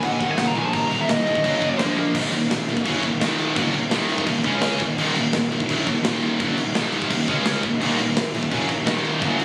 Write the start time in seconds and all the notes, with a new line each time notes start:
0.02 D#2 A#2 D#3 F#5, kick, crash
0.13 G#5
0.20 D#1 D#2 A#2 D#3 F#5, kick, crash
0.30 G#5
0.38 C#2 D#2 A#2 D#3 F#5, snare, crash
0.48 A#5
0.55 A#1 D#2 A#2 D#3 G#5, crash
0.64 A5
0.73 D#1 D#2 A#2 D#3 A#5, kick, crash
0.91 D#1 D#2 A#2 D#3, crash
1.01 E5
1.09 D#1 D#2 A#2 D#3 D#5, snare, crash
1.27 D#2 A#2 D#3, crash
1.35 kick
1.44 F#1 F#2 C#3 F#3, kick, crash
1.62 F#1 F#2 C#3 F#3, kick, crash
1.79 A#1 A#2 F3 A#3, snare, crash
1.96 A#1 A#2 F3 A#3, high tom
2.15 D#1 D#2 A#2 D#3, kick, crash
2.32 D#1 D#2 A#2, crash
2.50 D#1 D#2 A#2, snare, crash
2.66 D#1 D#2 A#2, crash
2.77 kick
2.85 F#1 F#2 C#3 F#3, kick, crash
3.03 D#1 D#2 A#2, kick, crash
3.20 D#1 D#2 A#2 D#3, snare, crash
3.39 crash
3.56 F#1 F#2 C#3 F#3, kick, crash
3.74 D#1 D#2 A#2, crash
3.91 D#1 D#2 A#2 D#3, snare, crash
4.09 crash
4.18 kick
4.26 D#1 D#2 A#2, kick, crash
4.43 C#2 C#3 G#3 C#4, kick, crash
4.62 snare, crash
4.80 D#1 D#2 A#2, kick, crash
4.98 D#1 D#2 A#2 D#3, crash
5.15 D#1 D#2 A#2, crash
5.33 D#1 D#2 A#2, snare, crash
5.51 D#1 D#2 A#2, crash
5.60 kick
5.68 F#1 F#2 C#3 F#3, kick, crash
5.86 D#1 D#2 A#2, kick, crash
6.03 D#1 D#2 A#2 D#3, snare, crash
6.22 crash
6.39 F#1 F#2 C#3 F#3, kick, crash
6.57 D#1 D#2 A#2, crash
6.75 D#1 D#2 A#2 D#3, snare, crash
6.92 crash
7.02 kick
7.10 D#1 D#2 A#2, kick, crash
7.27 C#2 C#3 G#3 C#4, kick, crash
7.45 snare, crash
7.63 D#1 D#2 A#2, kick, crash
7.80 D#1 D#2 A#2 D#3, crash
7.99 D#1 D#2 A#2, crash
8.16 D#1 D#2 A#2, snare, crash
8.34 D#1 D#2 A#2, crash
8.43 kick
8.51 F#1 F#2 C#3 F#3, kick, crash
8.69 D#1 D#2 A#2, kick, crash
8.86 D#1 D#2 A#2 D#3, snare, crash
9.05 crash
9.22 F#1 F#2 C#3 F#3, kick, crash
9.39 D#1 D#2 A#2, crash